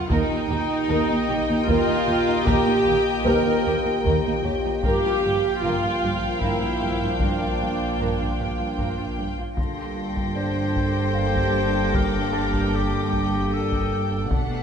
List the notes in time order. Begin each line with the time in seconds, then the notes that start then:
0.09 A#1 D#2 A#3 D#4 G4 A#4 D#5 G5 A#5, taiko
0.30 D#2 D#4
0.49 D#2 G4
0.89 D#2 A#4 D#6
1.09 D#2 D#4
1.28 D#2 G4
1.49 D#2 D#4
1.67 D#2 A#3 F4 A#4, taiko
1.88 D#2 D#4
2.07 D#2 G4
2.27 D#2 D#4
2.45 D#2 G4 A#4, taiko
2.66 D#2 D#4
2.86 D#2 G4
3.25 D#2 A#4 C5
3.46 D#2 D#4
3.66 D#2 G4
3.85 D#2 D#4
4.04 D#2 A#4, taiko
4.25 D#2 D#4
4.44 D#2 G4 C#5
4.65 D#2 D#4
4.83 G1 A#1 G2 F3 A#3 G4 A#4 F5 G5, taiko
5.03 G2 F4
5.23 G1 G2 G4
5.62 G1 G2 F4 A#4
5.83 G2 F4
6.01 G1 G2 G4
6.22 G2 F4
6.41 G1 G2 E4 A#4, taiko
6.61 G2 F4
6.80 G1 G2 G4
7.01 G2 F4
7.19 G1 G2 D4 A#4, taiko
7.40 G2 F4
7.58 G1 G2 G4
7.98 G1 G2 A#4
8.19 G2 F4
8.38 G1 G2 G4
8.59 G2 F4
8.77 G1 G2 A#4, taiko
8.97 G2 F4
9.17 G1 G2 G4
9.37 G2 F4
9.56 G1 G2 A#3 D4 G4 A4 G5 C6 A#6, taiko
10.16 taiko
10.35 D4 C5 D5
10.76 taiko
11.14 F5 D6
11.35 taiko
11.94 A#4, taiko
12.32 G4 A6
12.53 taiko
12.75 G4
13.13 taiko
13.19 D#6
13.53 A4
13.72 taiko
14.31 B1 B2 A3 D4 A4 F#5 B6 C7, taiko